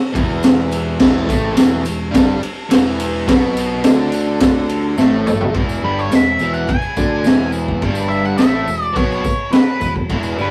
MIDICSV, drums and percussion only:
0, 0, Header, 1, 2, 480
1, 0, Start_track
1, 0, Tempo, 568720
1, 846, Time_signature, 4, 2, 24, 8
1, 8868, End_track
2, 0, Start_track
2, 0, Title_t, "Drums"
2, 128, Note_on_c, 9, 36, 110
2, 130, Note_on_c, 9, 51, 73
2, 213, Note_off_c, 9, 36, 0
2, 215, Note_off_c, 9, 51, 0
2, 361, Note_on_c, 9, 54, 87
2, 369, Note_on_c, 9, 51, 82
2, 372, Note_on_c, 9, 38, 120
2, 446, Note_off_c, 9, 54, 0
2, 453, Note_off_c, 9, 51, 0
2, 457, Note_off_c, 9, 38, 0
2, 605, Note_on_c, 9, 54, 70
2, 610, Note_on_c, 9, 51, 72
2, 689, Note_off_c, 9, 54, 0
2, 694, Note_off_c, 9, 51, 0
2, 840, Note_on_c, 9, 49, 102
2, 843, Note_on_c, 9, 38, 127
2, 847, Note_on_c, 9, 36, 97
2, 924, Note_off_c, 9, 49, 0
2, 928, Note_off_c, 9, 38, 0
2, 932, Note_off_c, 9, 36, 0
2, 1089, Note_on_c, 9, 36, 106
2, 1094, Note_on_c, 9, 51, 67
2, 1095, Note_on_c, 9, 54, 78
2, 1173, Note_off_c, 9, 36, 0
2, 1178, Note_off_c, 9, 51, 0
2, 1180, Note_off_c, 9, 54, 0
2, 1323, Note_on_c, 9, 51, 97
2, 1326, Note_on_c, 9, 38, 122
2, 1331, Note_on_c, 9, 54, 101
2, 1407, Note_off_c, 9, 51, 0
2, 1410, Note_off_c, 9, 38, 0
2, 1415, Note_off_c, 9, 54, 0
2, 1561, Note_on_c, 9, 54, 79
2, 1566, Note_on_c, 9, 51, 71
2, 1646, Note_off_c, 9, 54, 0
2, 1650, Note_off_c, 9, 51, 0
2, 1808, Note_on_c, 9, 36, 106
2, 1810, Note_on_c, 9, 51, 107
2, 1813, Note_on_c, 9, 38, 115
2, 1813, Note_on_c, 9, 54, 76
2, 1892, Note_off_c, 9, 36, 0
2, 1894, Note_off_c, 9, 51, 0
2, 1897, Note_off_c, 9, 54, 0
2, 1898, Note_off_c, 9, 38, 0
2, 2050, Note_on_c, 9, 51, 80
2, 2134, Note_off_c, 9, 51, 0
2, 2286, Note_on_c, 9, 51, 110
2, 2289, Note_on_c, 9, 38, 120
2, 2293, Note_on_c, 9, 54, 90
2, 2370, Note_off_c, 9, 51, 0
2, 2373, Note_off_c, 9, 38, 0
2, 2377, Note_off_c, 9, 54, 0
2, 2529, Note_on_c, 9, 51, 83
2, 2535, Note_on_c, 9, 54, 75
2, 2613, Note_off_c, 9, 51, 0
2, 2620, Note_off_c, 9, 54, 0
2, 2768, Note_on_c, 9, 36, 105
2, 2771, Note_on_c, 9, 51, 105
2, 2775, Note_on_c, 9, 38, 119
2, 2782, Note_on_c, 9, 54, 28
2, 2852, Note_off_c, 9, 36, 0
2, 2856, Note_off_c, 9, 51, 0
2, 2859, Note_off_c, 9, 38, 0
2, 2866, Note_off_c, 9, 54, 0
2, 3010, Note_on_c, 9, 51, 72
2, 3012, Note_on_c, 9, 54, 78
2, 3094, Note_off_c, 9, 51, 0
2, 3096, Note_off_c, 9, 54, 0
2, 3239, Note_on_c, 9, 51, 88
2, 3242, Note_on_c, 9, 38, 115
2, 3246, Note_on_c, 9, 54, 101
2, 3323, Note_off_c, 9, 51, 0
2, 3327, Note_off_c, 9, 38, 0
2, 3330, Note_off_c, 9, 54, 0
2, 3477, Note_on_c, 9, 51, 70
2, 3491, Note_on_c, 9, 54, 77
2, 3561, Note_off_c, 9, 51, 0
2, 3576, Note_off_c, 9, 54, 0
2, 3716, Note_on_c, 9, 51, 98
2, 3720, Note_on_c, 9, 38, 114
2, 3723, Note_on_c, 9, 36, 107
2, 3729, Note_on_c, 9, 54, 70
2, 3801, Note_off_c, 9, 51, 0
2, 3804, Note_off_c, 9, 38, 0
2, 3808, Note_off_c, 9, 36, 0
2, 3814, Note_off_c, 9, 54, 0
2, 3962, Note_on_c, 9, 51, 77
2, 3968, Note_on_c, 9, 54, 27
2, 4046, Note_off_c, 9, 51, 0
2, 4052, Note_off_c, 9, 54, 0
2, 4201, Note_on_c, 9, 54, 81
2, 4206, Note_on_c, 9, 38, 61
2, 4285, Note_off_c, 9, 54, 0
2, 4290, Note_off_c, 9, 38, 0
2, 4443, Note_on_c, 9, 45, 91
2, 4449, Note_on_c, 9, 54, 67
2, 4527, Note_off_c, 9, 45, 0
2, 4534, Note_off_c, 9, 54, 0
2, 4563, Note_on_c, 9, 43, 88
2, 4647, Note_off_c, 9, 43, 0
2, 4678, Note_on_c, 9, 57, 52
2, 4682, Note_on_c, 9, 36, 104
2, 4763, Note_off_c, 9, 57, 0
2, 4767, Note_off_c, 9, 36, 0
2, 4804, Note_on_c, 9, 54, 68
2, 4888, Note_off_c, 9, 54, 0
2, 5053, Note_on_c, 9, 54, 25
2, 5137, Note_off_c, 9, 54, 0
2, 5162, Note_on_c, 9, 54, 103
2, 5166, Note_on_c, 9, 57, 57
2, 5170, Note_on_c, 9, 38, 102
2, 5246, Note_off_c, 9, 54, 0
2, 5251, Note_off_c, 9, 57, 0
2, 5254, Note_off_c, 9, 38, 0
2, 5395, Note_on_c, 9, 54, 71
2, 5479, Note_off_c, 9, 54, 0
2, 5517, Note_on_c, 9, 54, 31
2, 5602, Note_off_c, 9, 54, 0
2, 5633, Note_on_c, 9, 54, 29
2, 5645, Note_on_c, 9, 36, 105
2, 5646, Note_on_c, 9, 57, 57
2, 5718, Note_off_c, 9, 54, 0
2, 5729, Note_off_c, 9, 36, 0
2, 5730, Note_off_c, 9, 57, 0
2, 5753, Note_on_c, 9, 54, 33
2, 5838, Note_off_c, 9, 54, 0
2, 5879, Note_on_c, 9, 54, 67
2, 5884, Note_on_c, 9, 36, 91
2, 5964, Note_off_c, 9, 54, 0
2, 5968, Note_off_c, 9, 36, 0
2, 6113, Note_on_c, 9, 54, 88
2, 6132, Note_on_c, 9, 57, 61
2, 6135, Note_on_c, 9, 38, 118
2, 6197, Note_off_c, 9, 54, 0
2, 6216, Note_off_c, 9, 57, 0
2, 6220, Note_off_c, 9, 38, 0
2, 6349, Note_on_c, 9, 54, 67
2, 6434, Note_off_c, 9, 54, 0
2, 6485, Note_on_c, 9, 36, 81
2, 6570, Note_off_c, 9, 36, 0
2, 6598, Note_on_c, 9, 57, 61
2, 6603, Note_on_c, 9, 36, 99
2, 6683, Note_off_c, 9, 57, 0
2, 6687, Note_off_c, 9, 36, 0
2, 6711, Note_on_c, 9, 54, 70
2, 6796, Note_off_c, 9, 54, 0
2, 6844, Note_on_c, 9, 54, 29
2, 6928, Note_off_c, 9, 54, 0
2, 6961, Note_on_c, 9, 54, 22
2, 7046, Note_off_c, 9, 54, 0
2, 7071, Note_on_c, 9, 54, 92
2, 7075, Note_on_c, 9, 57, 53
2, 7078, Note_on_c, 9, 38, 98
2, 7156, Note_off_c, 9, 54, 0
2, 7159, Note_off_c, 9, 57, 0
2, 7162, Note_off_c, 9, 38, 0
2, 7322, Note_on_c, 9, 54, 75
2, 7406, Note_off_c, 9, 54, 0
2, 7447, Note_on_c, 9, 54, 27
2, 7531, Note_off_c, 9, 54, 0
2, 7561, Note_on_c, 9, 57, 59
2, 7563, Note_on_c, 9, 36, 109
2, 7568, Note_on_c, 9, 54, 29
2, 7646, Note_off_c, 9, 57, 0
2, 7647, Note_off_c, 9, 36, 0
2, 7652, Note_off_c, 9, 54, 0
2, 7696, Note_on_c, 9, 54, 30
2, 7781, Note_off_c, 9, 54, 0
2, 7802, Note_on_c, 9, 54, 70
2, 7804, Note_on_c, 9, 36, 89
2, 7886, Note_off_c, 9, 54, 0
2, 7889, Note_off_c, 9, 36, 0
2, 8039, Note_on_c, 9, 54, 71
2, 8040, Note_on_c, 9, 57, 54
2, 8043, Note_on_c, 9, 38, 110
2, 8124, Note_off_c, 9, 54, 0
2, 8124, Note_off_c, 9, 57, 0
2, 8128, Note_off_c, 9, 38, 0
2, 8279, Note_on_c, 9, 54, 67
2, 8285, Note_on_c, 9, 36, 74
2, 8364, Note_off_c, 9, 54, 0
2, 8370, Note_off_c, 9, 36, 0
2, 8404, Note_on_c, 9, 36, 75
2, 8489, Note_off_c, 9, 36, 0
2, 8519, Note_on_c, 9, 57, 59
2, 8524, Note_on_c, 9, 36, 101
2, 8604, Note_off_c, 9, 57, 0
2, 8609, Note_off_c, 9, 36, 0
2, 8633, Note_on_c, 9, 54, 63
2, 8718, Note_off_c, 9, 54, 0
2, 8765, Note_on_c, 9, 54, 26
2, 8849, Note_off_c, 9, 54, 0
2, 8868, End_track
0, 0, End_of_file